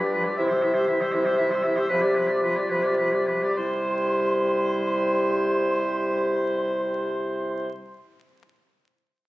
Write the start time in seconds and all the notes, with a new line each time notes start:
Already playing: G2
0.00 G3 G4 D5 D6
0.12 F4 B4 B5
0.16 F3
0.24 G3 G4 D5
0.28 D6
0.36 C3 E3 E4 E5
0.41 C6
0.48 G3 G4 C5 E6
0.62 E3 E4 E5 C6
0.74 G3 G4 C5
0.78 E6
0.87 E3 E4 E5
0.91 C6
1.01 G3 G4 C5 E6
1.12 C3 E3 E4 E5 C6
1.25 G3 G4 C5 E6
1.37 E3 E4 E5
1.41 C6
1.50 G3 G4 C5
1.55 E6
1.63 E3 E4 E5
1.67 C6
1.76 G3 G4 C5 E6
1.89 C3 F3 F4 B4
1.93 B5
2.01 G3 G4 D5
2.06 D6
2.15 F3 F4 B4 B5
2.28 G3 G4 D5 D6
2.42 F3 F4 B4 B5
2.56 G3 G4 D5 D6
2.70 C3 F3 F4 B4 B5
2.83 G3 G4 D5 D6
2.97 F3 F4 B4 B5
3.12 G3 G4 D5 D6
3.27 F3 F4 B4 B5
3.42 G3 G4 D5 D6
3.55 C3 G3 E4 C5 C6